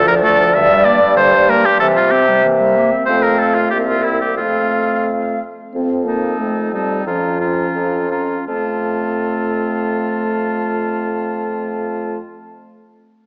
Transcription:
0.00 0.53 D2 medium
0.00 0.55 F3 medium
0.00 1.50 D5 medium
0.07 0.24 F3 medium
0.07 0.15 A#4 medium
0.22 0.40 A3 medium
0.22 0.55 A4 loud
0.39 0.54 F3 medium
0.54 1.79 G2 medium
0.54 0.71 D3 medium
0.54 2.14 G3 medium
0.54 0.86 E5 loud
0.69 0.87 G3 medium
0.85 1.02 A#3 medium
0.85 1.16 D5 medium
1.01 1.18 G3 medium
1.17 1.35 D3 medium
1.17 1.51 C5 loud
1.34 1.51 G3 medium
1.49 1.67 A#3 medium
1.49 1.67 A#4 loud
1.65 1.80 G3 medium
1.65 1.79 G4 medium
1.80 2.91 C3 medium
1.80 1.99 E3 medium
1.80 1.87 A4 loud
1.80 3.06 E5 medium
1.96 2.14 G3 medium
1.96 2.12 F4 medium
2.11 2.30 C4 medium
2.11 2.44 G4 medium
2.28 2.43 G3 medium
2.43 2.61 E3 medium
2.43 3.04 A#3 medium
2.60 2.78 G3 medium
2.76 2.93 A#3 medium
2.92 3.08 C4 medium
3.06 3.69 F2 medium
3.06 3.74 A3 medium
3.06 3.57 C4 medium
3.06 3.24 C5 loud
3.06 3.74 F5 medium
3.22 3.40 A#4 medium
3.38 3.56 A4 medium
3.55 3.70 F4 medium
3.70 4.41 C2 medium
3.70 4.38 A#3 medium
3.70 4.39 C4 medium
3.70 3.78 G4 medium
3.70 4.40 E5 medium
3.88 4.05 F4 medium
4.03 4.21 E4 medium
4.21 4.37 G4 medium
4.37 5.42 F2 soft
4.37 5.40 A3 soft
4.37 5.40 C4 soft
4.37 5.05 F4 medium
4.37 5.40 F5 soft
5.74 6.33 F2 soft
5.74 6.08 C4 medium
6.06 6.41 A#3 medium
6.06 6.72 C4 soft
6.06 6.72 D#4 soft
6.06 6.72 A5 soft
6.39 6.99 F2 soft
6.39 6.72 A3 medium
6.73 7.06 G3 medium
6.73 7.06 C4 soft
6.73 7.06 D#4 soft
6.73 7.05 A5 soft
7.06 7.66 F2 medium
7.06 8.09 F3 medium
7.06 7.40 C#4 soft
7.06 7.40 F4 soft
7.06 7.39 A#5 soft
7.40 8.10 C#4 soft
7.40 8.10 F4 soft
7.40 8.10 A#5 soft
7.75 8.39 F2 medium
8.11 8.47 C#4 soft
8.11 8.46 F4 soft
8.11 8.47 A#5 soft
8.47 12.19 F2 soft
8.47 12.18 A3 soft
8.47 12.19 C4 soft
8.47 12.18 F4 soft
8.47 12.18 A5 soft

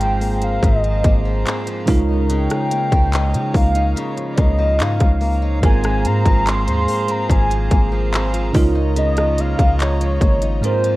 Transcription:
0.00 0.59 G#1 medium
0.00 0.62 G#2 medium
0.00 1.83 G#2 medium
0.00 0.83 F3 medium
0.00 1.84 G#3 medium
0.00 0.21 A#3 medium
0.00 0.41 C4 medium
0.00 1.84 C4 medium
0.00 1.85 F4 medium
0.00 1.85 G#4 medium
0.00 1.89 A#4 medium
0.00 1.85 C5 medium
0.00 8.51 F5 medium
0.00 0.45 G5 loud
0.00 5.59 A#5 medium
0.00 closed hi-hat medium
0.21 1.04 A#3 medium
0.21 open hi-hat medium
0.42 1.45 C4 medium
0.42 0.66 F5 medium
0.42 closed hi-hat medium
0.63 1.03 G#1 loud
0.63 1.96 G#2 medium
0.63 1.47 D#5 medium
0.63 kick medium
0.63 closed hi-hat medium
0.84 1.25 F3 medium
0.84 closed hi-hat medium
1.04 1.45 G#1 loud
1.04 2.71 A#3 medium
1.04 kick loud
1.04 closed hi-hat medium
1.25 1.67 F3 medium
1.46 1.96 C4 medium
1.46 clap loud
1.46 closed hi-hat medium
1.67 2.12 F3 medium
1.67 closed hi-hat medium
1.86 2.48 C#2 medium
1.86 5.16 C#3 medium
1.86 2.28 C#3 medium
1.86 5.17 G#3 medium
1.86 5.59 D#4 medium
1.86 5.17 D#4 medium
1.86 5.18 F4 medium
1.86 5.59 C#5 medium
1.86 kick loud
1.86 open hi-hat medium
1.90 5.19 A#4 medium
2.09 3.12 D#4 medium
2.30 3.95 C#3 medium
2.30 3.52 G5 loud
2.30 closed hi-hat medium
2.50 2.92 F3 medium
2.50 cross-stick loud
2.50 closed hi-hat medium
2.71 3.54 A#3 medium
2.71 closed hi-hat medium
2.92 3.36 C#2 loud
2.92 3.33 F3 medium
2.92 kick medium
2.92 closed hi-hat medium
3.13 3.75 D#4 medium
3.13 clap loud
3.13 closed hi-hat medium
3.34 3.54 C#3 medium
3.34 4.17 F3 medium
3.34 closed hi-hat medium
3.54 3.95 C#2 loud
3.54 4.37 A#3 medium
3.54 4.00 F5 medium
3.54 kick loud
3.54 open hi-hat medium
3.75 4.79 D#4 medium
3.75 closed hi-hat medium
3.96 5.71 C#3 medium
3.96 4.34 C#5 loud
3.96 closed hi-hat medium
4.17 4.58 F3 medium
4.17 closed hi-hat soft
4.33 4.42 D5 medium
4.38 4.82 C#2 loud
4.38 5.21 A#3 medium
4.38 4.83 D#5 medium
4.38 kick loud
4.38 closed hi-hat medium
4.58 5.00 F3 medium
4.79 5.00 G#2 loud
4.79 5.42 D#4 medium
4.79 5.43 F5 medium
4.79 clap loud
4.79 closed hi-hat medium
5.00 5.61 C#2 medium
5.00 5.83 F3 medium
5.00 kick medium
5.00 closed hi-hat medium
5.21 6.04 A#3 medium
5.21 open hi-hat medium
5.42 5.87 D#4 medium
5.61 6.07 G#1 loud
5.61 8.50 G#2 medium
5.61 7.28 G#2 medium
5.61 8.50 G#3 medium
5.61 5.70 B3 soft
5.61 8.51 F4 medium
5.61 8.52 G#4 medium
5.61 8.52 C5 medium
5.61 10.96 A#5 medium
5.61 kick loud
5.61 closed hi-hat medium
5.65 8.52 A#4 medium
5.65 6.08 G#5 loud
5.69 8.54 C4 medium
5.84 6.25 F3 medium
5.84 cross-stick loud
5.84 closed hi-hat medium
6.05 6.25 G#2 loud
6.05 6.88 A#3 medium
6.05 6.50 A#5 loud
6.05 closed hi-hat medium
6.26 6.69 G#1 loud
6.26 6.67 F3 medium
6.26 kick medium
6.26 closed hi-hat medium
6.46 7.08 C4 medium
6.46 7.13 C6 loud
6.46 clap loud
6.46 closed hi-hat medium
6.67 6.87 D#2 medium
6.67 7.50 F3 medium
6.67 closed hi-hat medium
6.88 7.71 A#3 medium
6.88 open hi-hat medium
7.08 8.11 C4 medium
7.08 7.31 A#5 loud
7.08 closed hi-hat medium
7.30 7.70 G#1 loud
7.30 8.63 G#2 medium
7.30 8.10 G#5 loud
7.30 kick medium
7.30 closed hi-hat medium
7.50 7.92 F3 medium
7.50 closed hi-hat soft
7.71 8.51 G#1 loud
7.71 9.37 A#3 medium
7.71 kick medium
7.71 closed hi-hat medium
7.92 8.33 F3 medium
8.13 8.63 C4 medium
8.13 clap loud
8.13 closed hi-hat medium
8.34 8.78 F3 medium
8.34 closed hi-hat medium
8.53 9.55 C#2 loud
8.53 10.58 C#3 medium
8.53 8.95 C#3 medium
8.53 10.59 G#3 medium
8.53 10.59 D#4 medium
8.53 10.96 F4 medium
8.53 10.60 F4 medium
8.53 10.61 C#5 medium
8.53 10.61 D#5 medium
8.53 kick loud
8.53 open hi-hat medium
8.57 10.60 A#4 medium
8.75 9.79 D#4 medium
8.96 10.71 C#3 medium
8.96 9.42 D#5 loud
8.96 closed hi-hat medium
9.17 9.58 F3 medium
9.17 cross-stick loud
9.17 closed hi-hat medium
9.38 10.21 A#3 medium
9.38 9.81 F5 loud
9.38 closed hi-hat medium
9.59 10.19 C#2 medium
9.59 10.00 F3 medium
9.59 kick loud
9.59 closed hi-hat medium
9.79 10.42 D#4 medium
9.79 10.60 C#5 loud
9.79 clap loud
9.79 closed hi-hat medium
10.00 10.84 F3 medium
10.00 closed hi-hat medium
10.21 10.61 G#1 loud
10.21 10.96 A#3 medium
10.21 kick loud
10.21 closed hi-hat medium
10.42 10.87 D#4 medium
10.42 closed hi-hat medium
10.61 10.96 G#2 medium
10.61 10.96 G#3 medium
10.61 10.96 C4 medium
10.61 10.96 F4 medium
10.61 10.96 C5 medium
10.61 10.96 G#5 medium
10.61 closed hi-hat medium
10.65 10.96 A#4 medium
10.65 10.96 C5 loud
10.84 10.96 F3 medium
10.84 closed hi-hat soft

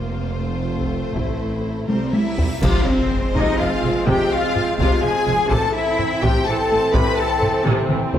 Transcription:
0.00 1.12 F1 medium
0.00 1.12 F2 medium
0.00 1.10 F3 medium
0.00 0.39 A#3 soft
0.00 1.84 C4 medium
0.00 1.12 F4 medium
0.00 1.86 C5 medium
0.43 1.88 A3 soft
0.79 taiko soft
1.14 1.87 A1 medium
1.14 1.87 A2 medium
1.14 1.84 E3 soft
1.14 1.88 E4 soft
1.14 taiko medium
1.14 reverse cymbal medium
1.87 2.41 C2 soft
1.87 2.41 C3 soft
1.87 2.42 G3 soft
1.87 2.34 A#3 soft
1.87 2.11 C4 medium
1.87 2.11 C4 soft
1.87 2.40 A#4 soft
1.87 2.11 C5 medium
1.87 taiko high medium
2.12 2.61 E4 medium
2.12 2.62 E4 medium
2.12 2.61 E5 medium
2.12 2.62 E5 medium
2.12 taiko high medium
2.38 taiko low medium
2.62 2.71 F1 medium
2.62 2.85 C3 medium
2.62 5.47 F3 medium
2.62 5.47 G#3 medium
2.62 5.47 C4 medium
2.62 2.86 F4 medium
2.62 2.86 F4 loud
2.62 2.86 F5 medium
2.62 2.87 F5 medium
2.62 concert bass drum medium
2.62 taiko medium
2.62 crash medium
2.62 impact medium
2.85 3.34 C4 medium
2.85 3.35 C4 loud
2.85 3.34 C5 medium
2.85 3.35 C5 medium
3.11 taiko low-mid medium
3.35 3.44 F1 medium
3.35 3.58 C3 medium
3.35 3.58 D#4 medium
3.35 3.59 D#4 loud
3.35 3.59 D#5 medium
3.35 taiko medium
3.58 3.69 F1 medium
3.58 3.68 F3 medium
3.58 4.08 F4 medium
3.58 4.06 F5 medium
3.58 4.08 F5 medium
3.84 3.93 F1 medium
3.84 3.92 G#3 medium
4.06 4.16 F1 medium
4.06 4.30 C3 medium
4.06 4.31 G4 medium
4.06 4.31 G4 loud
4.06 4.30 G5 medium
4.06 4.31 G5 medium
4.06 taiko medium
4.30 4.64 F4 medium
4.30 4.78 F4 loud
4.30 4.77 F5 medium
4.30 4.78 F5 medium
4.56 taiko low-mid medium
4.78 4.88 F1 medium
4.78 5.01 C3 medium
4.78 5.02 F4 medium
4.78 5.02 F4 loud
4.78 5.02 F5 medium
4.78 taiko medium
5.01 5.12 F1 medium
5.01 5.12 F3 medium
5.01 5.50 G#4 medium
5.01 5.50 G#4 loud
5.01 5.51 G#5 loud
5.01 5.50 G#5 medium
5.27 5.36 F1 medium
5.27 5.35 G#3 medium
5.50 5.59 A1 medium
5.50 5.73 C3 medium
5.50 8.19 E3 medium
5.50 8.19 C4 medium
5.50 5.74 A4 medium
5.50 5.75 A4 loud
5.50 5.74 A5 medium
5.50 5.75 A5 medium
5.50 taiko medium
5.74 6.21 E4 medium
5.74 6.22 E4 loud
5.74 6.22 E5 medium
5.99 taiko low-mid medium
6.22 6.31 A1 medium
6.22 6.45 C3 medium
6.22 6.46 G4 loud
6.22 6.46 G4 medium
6.22 6.46 G5 loud
6.22 taiko medium
6.46 6.55 A1 medium
6.46 6.55 E3 medium
6.46 6.94 A4 loud
6.46 6.94 A4 medium
6.46 6.94 A5 medium
6.71 6.79 A1 medium
6.71 6.79 A3 medium
6.94 7.02 A1 loud
6.94 7.16 C3 medium
6.94 7.18 B4 medium
6.94 7.17 B4 loud
6.94 7.18 B5 loud
6.94 7.17 B5 loud
6.94 taiko loud
7.17 7.65 A4 medium
7.17 7.66 A4 loud
7.17 7.65 A5 medium
7.42 taiko low-mid medium
7.66 7.74 A1 medium
7.66 7.88 C3 medium
7.66 taiko mid medium
7.89 7.98 A1 medium
7.89 7.97 E3 medium
7.89 taiko mid medium
8.14 8.19 A1 medium
8.14 8.19 A3 medium
8.14 taiko low loud

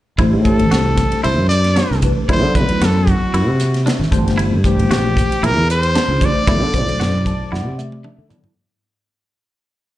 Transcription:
0.18 0.34 A1 medium
0.18 0.41 E3 medium
0.18 0.41 A3 medium
0.18 0.41 D4 medium
0.18 0.37 E4 medium
0.18 0.41 G4 medium
0.18 0.41 C5 medium
0.18 kick loud
0.18 ride medium
0.33 0.61 A2 medium
0.45 1.31 E3 medium
0.45 1.31 A3 medium
0.45 1.31 D4 medium
0.45 1.31 G4 medium
0.45 1.20 A4 medium
0.45 1.31 C5 medium
0.45 kick medium
0.45 hi-hat pedal medium
0.45 ride medium
0.59 0.69 A1 medium
0.59 ride medium
0.71 1.03 C2 medium
0.71 0.89 F#4 medium
0.71 snare medium
0.71 ride medium
0.97 kick medium
0.97 snare soft
0.97 hi-hat pedal medium
0.97 ride medium
1.12 muted fretless electric bass stroke soft
1.12 ride medium
1.23 1.39 C2 medium
1.23 1.42 E4 medium
1.23 1.48 C5 medium
1.23 ride medium
1.39 1.80 F#2 medium
1.49 1.98 D5 medium
1.49 hi-hat pedal medium
1.49 ride medium
1.64 snare soft
1.64 ride medium
1.76 1.94 D4 medium
1.76 snare medium
1.76 ride medium
1.91 2.11 C2 medium
1.91 snare soft
2.02 2.25 E3 medium
2.02 2.24 A3 soft
2.02 2.25 D4 medium
2.02 2.25 G4 medium
2.02 2.25 B4 medium
2.02 kick medium
2.02 hi-hat pedal medium
2.02 ride medium
2.29 2.42 D2 medium
2.29 2.51 F#3 medium
2.29 2.51 B3 medium
2.29 2.47 E4 medium
2.29 2.51 E4 medium
2.29 2.51 A4 medium
2.29 2.58 C5 medium
2.29 2.51 D5 medium
2.29 kick medium
2.29 ride medium
2.42 2.69 D3 medium
2.55 3.41 F#3 medium
2.55 3.41 B3 medium
2.55 3.41 E4 medium
2.55 3.41 A4 medium
2.55 2.86 B4 medium
2.55 3.41 D5 medium
2.55 kick medium
2.55 hi-hat pedal medium
2.55 ride soft
2.69 2.79 D2 medium
2.69 ride medium
2.81 3.13 F#2 medium
2.81 3.00 F#4 medium
2.81 3.11 A4 medium
2.81 snare medium
2.81 ride medium
3.07 3.87 F#4 medium
3.07 kick medium
3.07 hi-hat pedal medium
3.07 ride medium
3.22 muted fretless electric bass stroke soft
3.34 3.48 F#2 medium
3.34 3.52 E4 medium
3.34 ride medium
3.48 3.89 C3 medium
3.60 snare soft
3.60 hi-hat pedal medium
3.60 ride medium
3.74 snare soft
3.74 ride medium
3.86 4.04 D4 medium
3.86 4.11 E5 medium
3.86 snare medium
3.86 ride medium
3.99 4.09 G#1 medium
3.99 snare soft
4.12 4.54 G1 medium
4.12 4.55 E3 medium
4.12 4.55 A3 medium
4.12 4.55 D4 medium
4.12 4.55 G4 medium
4.12 4.55 C5 medium
4.12 4.36 A5 medium
4.12 kick loud
4.12 hi-hat pedal medium
4.12 ride medium
4.28 snare soft
4.28 ride medium
4.38 4.56 E4 medium
4.38 ride medium
4.52 4.79 G2 medium
4.64 5.49 E3 medium
4.64 5.50 A3 medium
4.64 5.50 D4 medium
4.64 5.50 G4 medium
4.64 5.47 G4 medium
4.64 5.50 C5 medium
4.64 kick medium
4.64 hi-hat pedal medium
4.64 ride medium
4.78 4.88 G1 medium
4.78 ride medium
4.90 5.22 A#1 medium
4.90 5.09 F#4 medium
4.90 snare medium
4.90 ride medium
5.17 kick medium
5.17 hi-hat pedal medium
5.17 ride medium
5.30 muted fretless electric bass stroke soft
5.30 ride medium
5.43 5.56 A#1 medium
5.43 5.61 E4 medium
5.43 5.70 A#4 medium
5.43 ride medium
5.56 5.97 E2 medium
5.70 6.27 C5 medium
5.70 hi-hat pedal medium
5.70 ride medium
5.83 ride medium
5.95 6.13 D4 medium
5.95 snare medium
5.95 ride medium
6.08 6.29 C#2 medium
6.21 6.43 E3 medium
6.21 6.43 A3 medium
6.21 6.43 D4 medium
6.21 6.43 G4 medium
6.21 6.43 C5 medium
6.21 kick medium
6.21 hi-hat pedal medium
6.21 ride medium
6.25 8.06 D5 loud
6.47 6.62 D2 medium
6.47 6.69 F#3 medium
6.47 6.69 B3 medium
6.47 6.69 E4 medium
6.47 6.66 E4 medium
6.47 6.69 A4 medium
6.47 6.69 D5 medium
6.47 kick loud
6.47 ride medium
6.62 6.87 D3 medium
6.74 7.59 B2 medium
6.74 7.59 F#3 medium
6.74 7.59 E4 medium
6.74 7.59 A4 medium
6.74 7.59 C5 medium
6.74 kick medium
6.74 hi-hat pedal medium
6.74 ride medium
6.87 6.97 D2 medium
6.87 ride medium
7.00 7.31 F#2 medium
7.00 7.18 F#4 medium
7.00 snare loud
7.00 ride medium
7.26 7.51 A5 medium
7.26 kick medium
7.26 hi-hat pedal medium
7.26 ride medium
7.40 muted fretless electric bass stroke soft
7.52 7.66 F#2 medium
7.52 7.70 E4 medium
7.52 7.76 F#5 medium
7.52 snare medium
7.66 8.07 C3 medium
7.78 8.02 E5 medium
7.78 hi-hat pedal medium
7.78 high tom medium
7.92 high tom medium
8.04 8.22 D4 medium
8.04 8.29 E5 medium
8.04 mid tom medium
8.18 8.39 D3 medium
8.29 8.51 F#3 medium
8.29 8.51 B3 medium
8.29 8.51 E4 medium
8.29 8.51 A4 medium
8.29 8.52 D5 medium
8.29 floor tom medium
8.29 hi-hat pedal medium
8.44 floor tom medium

